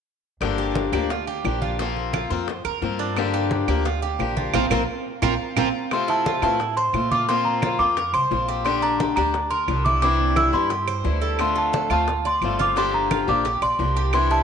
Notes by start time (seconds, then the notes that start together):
0.41 G1 D3 F3 A#3 D4 G4, high bongo, high conga, claves
0.58 G4, high bongo, high conga
0.75 high bongo, high conga
0.92 D2 F3 A#3 D4 G4 D5, high bongo, high conga, claves
1.10 F4, muted steel-string acoustic guitar stroke, high bongo, high conga
1.27 G4, high conga
1.44 A#1 F3 A#3 D4 G4, high bongo, low bongo, high conga, claves
1.62 F4, high bongo, high conga
1.79 F3 A#3 C4 F4, high bongo, high conga
1.97 high bongo, high conga
2.13 F4, high bongo, high conga, claves
2.30 F2 A#3 C4 F4 C5, high bongo, high conga
2.48 muted steel-string acoustic guitar stroke, high bongo, high conga
2.65 F2 A#4, high conga, claves
2.82 G2 F3 A#3 C4 F4, high bongo, low bongo, high conga
2.99 D4, high bongo
3.16 D3 F3 A#3 D4 G4, high bongo, high conga, claves
3.34 G4, high bongo, high conga
3.51 high bongo, high conga
3.68 D2 F3 A#3 D4 G4 D5, high bongo, high conga, claves
3.85 F4, muted steel-string acoustic guitar stroke, high bongo, high conga
4.02 G4, high conga
4.19 A#1 F3 A#3 D4 G4, high bongo, low bongo, high conga, claves
4.37 F4, high bongo, high conga
4.53 A#1 F3 A#3 C4 F4 A#4, low bongo, low conga, claves
4.70 A#1 F3 A#3 C4 F4 A#4, low bongo, low conga, claves
5.22 A#1 F3 A#3 C4 F4 A#4, low bongo, low conga, claves
5.56 A#1 F3 A#3 C4 F4 A#4, low bongo, low conga, claves
5.91 C3 A3 C4 F4 C6, high bongo, high conga, claves
6.08 E4 A5, high bongo, high conga
6.26 F4, high bongo, high conga
6.42 A2 E3 A3 C4 E4 F4 A5, high bongo, high conga, claves
6.60 muted steel-string acoustic guitar stroke, high bongo, high conga
6.77 C5 C6, high conga
6.93 A#2 A3 C4 F4, high bongo, low bongo, high conga, claves
7.11 F4 D6, high bongo, high conga
7.28 F3 A#3 C4 F4 C6, high bongo, high conga
7.45 A#5, high bongo, high conga
7.62 F4, high bongo, high conga, claves
7.79 F2 A#3 C4 F4 D6, high bongo, high conga
7.97 A#4, muted steel-string acoustic guitar stroke, high bongo, high conga
8.13 C2 C5 C6, high conga, claves
8.31 A#1 F3 A#3 C4 F4, high bongo, low bongo, high conga
8.48 G4, high bongo
8.65 D3 G3 D4 G4 C6, high bongo, high conga, claves
8.82 D4 A#5, high bongo, high conga
9.00 G4, high bongo, high conga
9.16 D2 G3 D4 G4 A#5, high bongo, high conga, claves
9.34 muted steel-string acoustic guitar stroke, high bongo, high conga
9.50 A#4 C6, high conga
9.68 C2 D3 G3 D4 G4, high bongo, low bongo, high conga, claves
9.85 E4 D6, high bongo, high conga
10.02 C3 E3 G3 C4 D4 E4 D6, high bongo, high conga
10.19 high bongo, high conga
10.36 E4 E6, high bongo, high conga, claves
10.53 G2 E3 G3 D4 E4 C6, high bongo, high conga
10.70 G4, muted steel-string acoustic guitar stroke, high bongo, high conga
10.88 C5, high conga, claves
11.04 D2 E3 G3 D4 E4, high bongo, low bongo, high conga
11.21 A4, high bongo
11.39 D3 A3 C4 F4 C6, high bongo, high conga, claves
11.55 F4 A5, high bongo, high conga
11.73 A4, high bongo, high conga
11.90 D2 A3 C4 F4 A5, high bongo, high conga, claves
12.08 muted steel-string acoustic guitar stroke, high bongo, high conga
12.25 D5 C6, high conga
12.41 G1 D3 A3 C4 F4, high bongo, low bongo, high conga, claves
12.59 F4 D6, high bongo, high conga
12.76 D3 F3 A#3 D4 G4 C6, high bongo, high conga
12.94 A#5, high bongo, high conga
13.11 F4, high bongo, high conga, claves
13.28 A#1 F3 A#3 D4 G4 D6, high bongo, high conga
13.45 G4, muted steel-string acoustic guitar stroke, high bongo, high conga
13.62 A#1 D5 C6, high conga, claves
13.79 C2 F3 A#3 D4 G4, high bongo, low bongo, high conga
13.97 G4, high bongo
14.13 C3 E3 G3 D4 E4 C6, high bongo, high conga, claves
14.30 E4 A5, high bongo, high conga